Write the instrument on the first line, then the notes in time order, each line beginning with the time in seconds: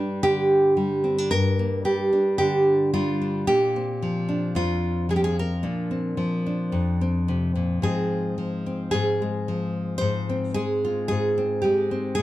nylon-string guitar
Already playing: G2 G3 D4 G4
0.23 D3 G4
0.77 G3
1.04 C4
1.18 D4
1.31 G2 A#4
1.59 A#3
1.85 G3 G4
2.13 D4
2.38 D3 G4
2.93 G3 F4
3.22 D4
3.47 A#2 G4
3.76 C4
4.02 F3
4.29 D4
4.55 F2 F4
5.09 F3 G#4
5.16 G4
5.24 G#4
5.39 A#4
5.63 A#2 D4
5.91 C4
6.17 F3
6.46 D4
6.72 F2
7.01 C4
7.28 C3
7.55 A#2
7.82 G#2 F3 G#3 C4 G#4
8.38 F3
8.66 C4
8.91 G#2 G#4
9.22 G#3
9.48 F3
9.98 G#2 C5
10.29 C4
10.54 G#3 G#4
10.85 F4
11.08 G#2 G#4
11.38 C4
11.62 G#3 G4
11.91 C4
12.15 A#2 G#4